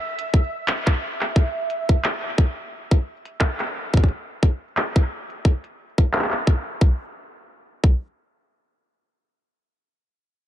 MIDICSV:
0, 0, Header, 1, 3, 480
1, 0, Start_track
1, 0, Tempo, 681818
1, 957, Time_signature, 4, 2, 24, 8
1, 7372, End_track
2, 0, Start_track
2, 0, Title_t, "Synth texture"
2, 0, Program_c, 0, 99
2, 0, Note_on_c, 0, 76, 80
2, 968, Note_off_c, 0, 76, 0
2, 7372, End_track
3, 0, Start_track
3, 0, Title_t, "Drums"
3, 131, Note_on_c, 9, 42, 72
3, 202, Note_off_c, 9, 42, 0
3, 237, Note_on_c, 9, 36, 109
3, 307, Note_off_c, 9, 36, 0
3, 477, Note_on_c, 9, 39, 105
3, 477, Note_on_c, 9, 42, 83
3, 548, Note_off_c, 9, 39, 0
3, 548, Note_off_c, 9, 42, 0
3, 611, Note_on_c, 9, 36, 96
3, 612, Note_on_c, 9, 39, 56
3, 612, Note_on_c, 9, 42, 46
3, 682, Note_off_c, 9, 36, 0
3, 682, Note_off_c, 9, 39, 0
3, 682, Note_off_c, 9, 42, 0
3, 851, Note_on_c, 9, 39, 57
3, 922, Note_off_c, 9, 39, 0
3, 957, Note_on_c, 9, 36, 106
3, 957, Note_on_c, 9, 42, 47
3, 1027, Note_off_c, 9, 36, 0
3, 1027, Note_off_c, 9, 42, 0
3, 1197, Note_on_c, 9, 42, 76
3, 1267, Note_off_c, 9, 42, 0
3, 1331, Note_on_c, 9, 36, 92
3, 1402, Note_off_c, 9, 36, 0
3, 1437, Note_on_c, 9, 39, 104
3, 1437, Note_on_c, 9, 42, 81
3, 1507, Note_off_c, 9, 39, 0
3, 1507, Note_off_c, 9, 42, 0
3, 1677, Note_on_c, 9, 36, 105
3, 1747, Note_off_c, 9, 36, 0
3, 2051, Note_on_c, 9, 36, 88
3, 2051, Note_on_c, 9, 42, 72
3, 2122, Note_off_c, 9, 36, 0
3, 2122, Note_off_c, 9, 42, 0
3, 2291, Note_on_c, 9, 42, 85
3, 2361, Note_off_c, 9, 42, 0
3, 2397, Note_on_c, 9, 36, 105
3, 2397, Note_on_c, 9, 39, 107
3, 2467, Note_off_c, 9, 36, 0
3, 2467, Note_off_c, 9, 39, 0
3, 2531, Note_on_c, 9, 39, 53
3, 2531, Note_on_c, 9, 42, 48
3, 2601, Note_off_c, 9, 39, 0
3, 2601, Note_off_c, 9, 42, 0
3, 2771, Note_on_c, 9, 36, 87
3, 2797, Note_off_c, 9, 36, 0
3, 2797, Note_on_c, 9, 36, 71
3, 2841, Note_off_c, 9, 36, 0
3, 2841, Note_on_c, 9, 36, 56
3, 2877, Note_on_c, 9, 42, 48
3, 2912, Note_off_c, 9, 36, 0
3, 2947, Note_off_c, 9, 42, 0
3, 3117, Note_on_c, 9, 36, 105
3, 3117, Note_on_c, 9, 42, 77
3, 3187, Note_off_c, 9, 36, 0
3, 3187, Note_off_c, 9, 42, 0
3, 3356, Note_on_c, 9, 39, 104
3, 3356, Note_on_c, 9, 42, 88
3, 3427, Note_off_c, 9, 39, 0
3, 3427, Note_off_c, 9, 42, 0
3, 3491, Note_on_c, 9, 36, 91
3, 3561, Note_off_c, 9, 36, 0
3, 3731, Note_on_c, 9, 42, 50
3, 3802, Note_off_c, 9, 42, 0
3, 3837, Note_on_c, 9, 36, 109
3, 3907, Note_off_c, 9, 36, 0
3, 3971, Note_on_c, 9, 42, 75
3, 4041, Note_off_c, 9, 42, 0
3, 4211, Note_on_c, 9, 36, 94
3, 4211, Note_on_c, 9, 42, 87
3, 4281, Note_off_c, 9, 36, 0
3, 4282, Note_off_c, 9, 42, 0
3, 4317, Note_on_c, 9, 39, 100
3, 4339, Note_off_c, 9, 39, 0
3, 4339, Note_on_c, 9, 39, 82
3, 4361, Note_off_c, 9, 39, 0
3, 4361, Note_on_c, 9, 39, 65
3, 4384, Note_off_c, 9, 39, 0
3, 4384, Note_on_c, 9, 39, 56
3, 4396, Note_off_c, 9, 39, 0
3, 4396, Note_on_c, 9, 39, 46
3, 4428, Note_off_c, 9, 39, 0
3, 4428, Note_on_c, 9, 39, 38
3, 4451, Note_off_c, 9, 39, 0
3, 4451, Note_on_c, 9, 39, 55
3, 4451, Note_on_c, 9, 42, 50
3, 4521, Note_off_c, 9, 39, 0
3, 4521, Note_off_c, 9, 42, 0
3, 4556, Note_on_c, 9, 36, 103
3, 4627, Note_off_c, 9, 36, 0
3, 4796, Note_on_c, 9, 36, 103
3, 4867, Note_off_c, 9, 36, 0
3, 5517, Note_on_c, 9, 36, 104
3, 5587, Note_off_c, 9, 36, 0
3, 7372, End_track
0, 0, End_of_file